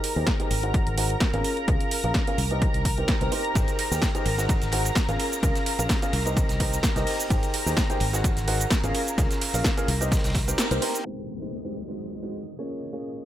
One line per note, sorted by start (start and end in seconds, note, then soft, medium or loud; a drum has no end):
0.00 0.13 D#4 medium
0.00 0.13 G4 medium
0.00 0.13 G#4 medium
0.00 11.06 A#4 medium
0.00 0.13 C5 medium
0.00 0.13 G5 medium
0.00 11.07 A#5 medium
0.00 open hi-hat loud
0.16 0.23 D#2 medium
0.16 0.31 D#4 medium
0.16 0.31 G4 medium
0.16 0.31 G#4 medium
0.16 0.31 C5 medium
0.16 0.31 G5 medium
0.27 kick loud
0.27 snare loud
0.27 closed hi-hat medium
0.40 0.49 D#4 medium
0.40 0.49 G4 medium
0.40 0.49 G#4 medium
0.40 0.49 C5 medium
0.40 0.49 G5 medium
0.40 closed hi-hat medium
0.51 0.80 G#1 loud
0.51 open hi-hat loud
0.63 0.95 D#4 medium
0.63 0.95 F#4 medium
0.63 0.95 G#4 medium
0.63 0.95 C5 medium
0.63 0.95 F#5 medium
0.63 closed hi-hat soft
0.74 kick loud
0.74 closed hi-hat medium
0.87 1.15 G#1 medium
0.87 closed hi-hat medium
0.98 1.14 D#4 medium
0.98 1.14 F#4 medium
0.98 1.14 G#4 medium
0.98 1.14 C5 medium
0.98 1.14 F#5 medium
0.98 open hi-hat loud
1.10 closed hi-hat soft
1.20 kick loud
1.20 snare loud
1.20 closed hi-hat medium
1.33 1.41 G#1 loud
1.33 1.65 C#4 medium
1.33 1.65 F4 medium
1.33 1.65 G#4 medium
1.33 1.65 A#4 medium
1.33 1.65 F5 loud
1.33 closed hi-hat medium
1.44 open hi-hat loud
1.57 closed hi-hat soft
1.68 1.76 C#2 loud
1.68 2.01 C#4 medium
1.68 2.01 F4 medium
1.68 2.01 G#4 medium
1.68 2.01 A#4 medium
1.68 2.01 F5 medium
1.68 kick loud
1.68 closed hi-hat medium
1.80 closed hi-hat medium
1.91 open hi-hat loud
2.04 2.11 A#1 medium
2.04 2.19 C#4 medium
2.04 2.19 F4 medium
2.04 2.19 G#4 medium
2.04 2.19 A#4 medium
2.04 2.19 F5 medium
2.04 closed hi-hat soft
2.14 kick loud
2.14 snare loud
2.14 closed hi-hat medium
2.27 2.37 C#4 medium
2.27 2.37 F4 medium
2.27 2.37 G#4 medium
2.27 2.37 A#4 medium
2.27 2.37 F5 medium
2.27 closed hi-hat soft
2.38 2.67 C2 loud
2.38 open hi-hat loud
2.51 2.83 C4 medium
2.51 2.83 D#4 medium
2.51 2.83 G4 medium
2.51 2.83 A#4 medium
2.51 2.83 D#5 medium
2.51 closed hi-hat soft
2.62 kick loud
2.62 closed hi-hat medium
2.74 3.02 C2 medium
2.74 closed hi-hat medium
2.85 kick medium
2.85 open hi-hat loud
2.98 3.13 C4 medium
2.98 3.13 D#4 medium
2.98 3.13 G4 medium
2.98 3.13 A#4 medium
2.98 3.13 G5 medium
2.98 closed hi-hat soft
3.08 kick loud
3.08 snare loud
3.08 closed hi-hat medium
3.21 3.28 C2 medium
3.21 3.30 C4 medium
3.21 3.30 D#4 medium
3.21 3.30 G4 medium
3.21 3.30 A#4 medium
3.21 3.30 C5 medium
3.21 closed hi-hat medium
3.32 3.53 C4 loud
3.32 3.53 D#4 medium
3.32 3.53 G4 medium
3.32 3.53 A#4 medium
3.32 3.53 C5 loud
3.32 open hi-hat loud
3.44 closed hi-hat soft
3.55 3.64 G#1 medium
3.55 3.88 D#4 medium
3.55 3.88 G4 medium
3.55 3.88 G#4 medium
3.55 3.88 C5 medium
3.55 3.88 G5 medium
3.55 kick loud
3.55 closed hi-hat medium
3.55 ride medium
3.55 shaker medium
3.68 closed hi-hat soft
3.68 shaker soft
3.79 open hi-hat loud
3.79 ride medium
3.91 3.99 D#2 medium
3.91 4.07 D#4 medium
3.91 4.07 G4 medium
3.91 4.07 G#4 medium
3.91 4.07 C5 medium
3.91 4.07 G5 medium
3.91 snare soft
3.91 shaker medium
4.02 kick loud
4.02 snare loud
4.02 closed hi-hat medium
4.02 ride medium
4.02 shaker medium
4.15 4.24 D#4 medium
4.15 4.24 G4 medium
4.15 4.24 G#4 medium
4.15 4.24 C5 medium
4.15 4.24 G5 loud
4.15 closed hi-hat medium
4.15 shaker soft
4.26 4.55 G#1 loud
4.26 open hi-hat loud
4.26 ride medium
4.38 4.70 D#4 medium
4.38 4.70 F#4 medium
4.38 4.70 G#4 medium
4.38 4.70 C5 medium
4.38 4.70 F#5 medium
4.38 snare medium
4.38 closed hi-hat soft
4.38 shaker medium
4.49 kick loud
4.49 closed hi-hat medium
4.49 ride medium
4.49 shaker medium
4.62 4.90 G#1 medium
4.62 snare soft
4.62 closed hi-hat soft
4.62 shaker soft
4.72 4.89 D#4 medium
4.72 4.89 F#4 medium
4.72 4.89 G#4 medium
4.72 4.89 C5 medium
4.72 4.89 F#5 medium
4.72 open hi-hat loud
4.72 ride medium
4.85 closed hi-hat soft
4.85 ride soft
4.85 shaker medium
4.95 kick loud
4.95 snare loud
4.95 closed hi-hat medium
4.95 ride medium
4.95 shaker medium
5.09 5.16 G#1 loud
5.09 5.40 C#4 medium
5.09 5.40 F4 medium
5.09 5.40 G#4 medium
5.09 5.40 A#4 medium
5.09 5.40 F5 loud
5.09 closed hi-hat medium
5.09 shaker soft
5.20 open hi-hat loud
5.20 ride medium
5.32 closed hi-hat soft
5.32 shaker medium
5.43 5.51 C#2 medium
5.43 5.76 C#4 medium
5.43 5.76 F4 medium
5.43 5.76 G#4 medium
5.43 5.76 A#4 medium
5.43 5.76 F5 medium
5.43 kick loud
5.43 closed hi-hat medium
5.43 ride medium
5.43 shaker medium
5.55 snare soft
5.55 closed hi-hat medium
5.55 shaker soft
5.66 open hi-hat loud
5.66 ride medium
5.79 5.86 A#1 medium
5.79 5.94 C#4 medium
5.79 5.94 F4 medium
5.79 5.94 G#4 medium
5.79 5.94 A#4 medium
5.79 5.94 F5 medium
5.79 closed hi-hat soft
5.79 ride soft
5.79 shaker medium
5.89 kick loud
5.89 snare loud
5.89 closed hi-hat medium
5.89 ride medium
5.89 shaker medium
6.02 6.12 C#4 medium
6.02 6.12 F4 medium
6.02 6.12 G#4 medium
6.02 6.12 A#4 medium
6.02 6.12 F5 loud
6.02 closed hi-hat medium
6.02 ride soft
6.02 shaker soft
6.13 6.42 C2 loud
6.13 open hi-hat loud
6.13 ride medium
6.26 6.57 C4 medium
6.26 6.57 D#4 medium
6.26 6.57 G4 medium
6.26 6.57 A#4 medium
6.26 6.57 D#5 medium
6.26 closed hi-hat soft
6.26 shaker medium
6.37 kick loud
6.37 closed hi-hat medium
6.37 ride medium
6.37 shaker medium
6.49 6.77 C2 medium
6.49 snare soft
6.49 closed hi-hat medium
6.49 shaker soft
6.60 6.76 C4 medium
6.60 6.76 D#4 medium
6.60 6.76 G4 medium
6.60 6.76 A#4 medium
6.60 6.76 D#5 medium
6.60 kick medium
6.60 open hi-hat loud
6.60 ride medium
6.72 snare soft
6.72 closed hi-hat soft
6.72 shaker medium
6.83 kick loud
6.83 snare loud
6.83 closed hi-hat medium
6.83 ride medium
6.83 shaker medium
6.96 7.03 C2 loud
6.96 7.28 C4 medium
6.96 7.28 D#4 medium
6.96 7.28 G4 medium
6.96 7.28 A#4 medium
6.96 7.28 D#5 loud
6.96 snare soft
6.96 closed hi-hat medium
6.96 shaker soft
7.07 open hi-hat loud
7.07 open hi-hat medium
7.19 closed hi-hat soft
7.19 shaker medium
7.30 7.39 G#1 loud
7.30 7.63 D#4 medium
7.30 7.63 G4 medium
7.30 7.63 G#4 medium
7.30 7.63 C5 medium
7.30 7.63 G5 medium
7.30 kick loud
7.30 closed hi-hat medium
7.30 ride medium
7.30 shaker medium
7.43 closed hi-hat medium
7.43 shaker soft
7.54 open hi-hat loud
7.54 ride medium
7.66 7.73 D#2 medium
7.66 7.81 D#4 medium
7.66 7.82 G4 medium
7.66 7.82 G#4 medium
7.66 7.82 C5 medium
7.66 7.82 G5 medium
7.66 snare soft
7.66 shaker medium
7.77 kick loud
7.77 snare loud
7.77 closed hi-hat medium
7.77 ride medium
7.77 shaker medium
7.90 7.99 D#4 medium
7.90 7.99 G4 medium
7.90 7.99 G#4 medium
7.90 7.99 C5 medium
7.90 7.99 G5 loud
7.90 closed hi-hat medium
7.90 shaker soft
8.00 8.30 G#1 loud
8.00 open hi-hat loud
8.00 ride medium
8.13 8.45 D#4 medium
8.13 8.45 F#4 medium
8.13 8.45 G#4 medium
8.13 8.45 C5 medium
8.13 8.45 F#5 medium
8.13 snare medium
8.13 closed hi-hat soft
8.13 shaker medium
8.24 kick loud
8.24 closed hi-hat medium
8.24 ride medium
8.24 shaker medium
8.37 8.65 G#1 medium
8.37 snare soft
8.37 closed hi-hat medium
8.37 shaker soft
8.48 8.64 D#4 medium
8.48 8.64 F#4 medium
8.48 8.64 G#4 medium
8.48 8.64 C5 medium
8.48 8.64 F#5 medium
8.48 open hi-hat loud
8.48 ride medium
8.60 closed hi-hat soft
8.60 ride soft
8.60 shaker medium
8.70 kick loud
8.70 snare loud
8.70 closed hi-hat medium
8.70 ride medium
8.70 shaker medium
8.83 8.91 G#1 loud
8.83 9.15 C#4 medium
8.83 9.15 F4 medium
8.83 9.15 G#4 medium
8.83 9.15 A#4 medium
8.83 9.15 F5 loud
8.83 closed hi-hat medium
8.83 shaker soft
8.95 open hi-hat loud
8.95 ride medium
9.07 closed hi-hat soft
9.07 shaker medium
9.18 9.26 C#2 loud
9.18 9.51 C#4 medium
9.18 9.51 F4 medium
9.18 9.51 G#4 medium
9.18 9.51 A#4 medium
9.18 9.51 F5 medium
9.18 kick loud
9.18 closed hi-hat medium
9.18 ride medium
9.18 shaker medium
9.31 snare medium
9.31 closed hi-hat medium
9.31 shaker soft
9.41 open hi-hat loud
9.41 ride medium
9.54 9.61 A#1 medium
9.54 9.69 C#4 medium
9.54 9.69 F4 medium
9.54 9.69 G#4 medium
9.54 9.69 A#4 medium
9.54 9.69 F5 medium
9.54 open hi-hat medium
9.54 ride soft
9.54 shaker medium
9.64 kick loud
9.64 snare loud
9.64 closed hi-hat medium
9.64 ride medium
9.64 shaker medium
9.77 9.87 C#4 medium
9.77 9.87 F4 medium
9.77 9.87 G#4 medium
9.77 9.87 A#4 medium
9.77 9.87 F5 loud
9.77 closed hi-hat medium
9.77 ride soft
9.77 shaker soft
9.88 10.17 C2 loud
9.88 open hi-hat loud
9.88 ride medium
10.01 10.33 C4 medium
10.01 10.33 D#4 medium
10.01 10.33 G4 medium
10.01 10.33 A#4 medium
10.01 10.33 D#5 medium
10.01 closed hi-hat soft
10.01 shaker medium
10.11 kick loud
10.11 snare medium
10.11 closed hi-hat medium
10.11 ride medium
10.11 shaker medium
10.17 snare medium
10.17 ride medium
10.24 10.52 C2 medium
10.24 snare loud
10.24 closed hi-hat medium
10.24 ride medium
10.24 shaker soft
10.30 snare medium
10.30 ride medium
10.35 kick medium
10.35 snare loud
10.35 open hi-hat loud
10.35 ride medium
10.48 10.63 C4 medium
10.48 10.63 D#4 medium
10.48 10.63 G4 medium
10.48 10.63 A#4 medium
10.48 10.63 G5 medium
10.48 closed hi-hat soft
10.48 shaker medium
10.58 snare loud
10.58 closed hi-hat medium
10.58 ride medium
10.58 shaker medium
10.71 10.78 C2 medium
10.71 10.80 C4 medium
10.71 10.80 D#4 medium
10.71 10.80 G4 medium
10.71 10.80 A#4 medium
10.71 10.80 C5 loud
10.71 snare soft
10.71 closed hi-hat medium
10.71 shaker soft
10.82 11.03 C4 loud
10.82 11.03 D#4 medium
10.82 11.03 G4 medium
10.82 11.03 A#4 medium
10.82 11.03 C5 loud
10.82 open hi-hat medium
10.82 open hi-hat loud
10.95 closed hi-hat soft
10.95 shaker medium
11.05 11.38 G#3 medium
11.05 11.38 C4 medium
11.05 11.38 D#4 medium
11.05 11.38 G4 medium
11.05 11.38 C5 medium
11.05 13.25 D#5 medium
11.05 13.25 D#6 medium
11.05 downlifter medium
11.41 11.56 G#3 medium
11.41 11.56 C4 medium
11.41 11.56 D#4 medium
11.41 11.57 G4 medium
11.41 11.57 C5 medium
11.65 11.74 G#3 medium
11.65 11.74 C4 medium
11.65 11.74 D#4 medium
11.65 11.74 G4 medium
11.65 11.74 C5 medium
11.88 12.20 G#3 medium
11.88 12.20 C4 medium
11.88 12.20 D#4 medium
11.88 12.20 F#4 medium
11.88 12.20 C5 medium
12.23 12.39 G#3 medium
12.23 12.39 C4 medium
12.23 12.39 D#4 medium
12.23 12.39 F#4 medium
12.23 12.39 C5 medium
12.59 12.90 A#3 medium
12.59 12.90 C#4 medium
12.59 12.90 F4 medium
12.59 12.90 G#4 medium
12.59 12.90 C#5 medium
12.93 13.25 A#3 medium
12.93 13.25 C#4 medium
12.93 13.25 F4 medium
12.93 13.25 G#4 medium
12.93 13.25 C#5 medium